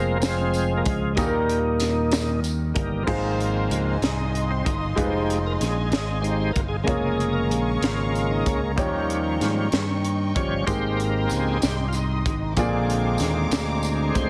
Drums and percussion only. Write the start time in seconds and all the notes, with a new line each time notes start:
0.22 snare, closed hi-hat, tambourine
0.54 closed hi-hat, tambourine
0.86 kick, closed hi-hat
1.17 kick, closed hi-hat, tambourine
1.50 closed hi-hat
1.80 snare, closed hi-hat, tambourine
2.12 snare, closed hi-hat, tambourine
2.44 closed hi-hat, tambourine
2.76 kick, closed hi-hat
3.08 kick, crash
3.41 closed hi-hat
3.71 closed hi-hat
4.02 snare, closed hi-hat
4.35 closed hi-hat
4.66 kick, closed hi-hat
4.98 kick, closed hi-hat
5.30 closed hi-hat
5.61 snare, closed hi-hat
5.92 snare, closed hi-hat
6.24 closed hi-hat
6.56 kick, closed hi-hat
6.87 kick, closed hi-hat
7.20 closed hi-hat
7.51 closed hi-hat
7.83 snare, closed hi-hat
8.15 closed hi-hat
8.46 kick, closed hi-hat
8.78 kick, closed hi-hat
9.10 closed hi-hat
9.41 snare, closed hi-hat
9.72 snare, closed hi-hat
10.05 closed hi-hat
10.36 kick, closed hi-hat
10.67 kick, closed hi-hat, tambourine
11.00 closed hi-hat
11.29 closed hi-hat, tambourine
11.62 snare, closed hi-hat, tambourine
11.93 closed hi-hat, tambourine
12.26 kick, closed hi-hat
12.57 kick, closed hi-hat, tambourine
12.90 closed hi-hat
13.18 snare, closed hi-hat, tambourine
13.51 snare, closed hi-hat, tambourine
13.83 closed hi-hat, tambourine
14.15 kick, closed hi-hat